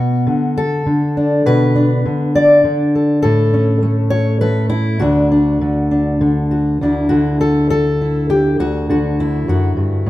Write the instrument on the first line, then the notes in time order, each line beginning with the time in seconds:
steel-string acoustic guitar
Already playing: B2 B3 F#4
0.27 D3
0.57 A4
0.86 D3
1.17 D4
1.46 B2 B4
1.75 D4
2.06 D3
2.35 D5
2.64 D3
2.95 A4
3.22 A2 A4
3.54 C#4
3.82 A3
4.10 C#5
4.41 A3 B4
4.70 E4
4.99 D2 D3 D4 F#4
5.32 D4
5.61 D3
5.91 D4
6.21 D3
6.51 F#4
6.81 D2 D3 D4 E4
7.09 D3 F#4
7.41 A4
7.70 A4
8.01 E4
8.30 G4
8.60 D2 F#4
8.89 D3 F#4
9.20 E4
9.48 F#2 F#4
9.77 G2
10.06 A2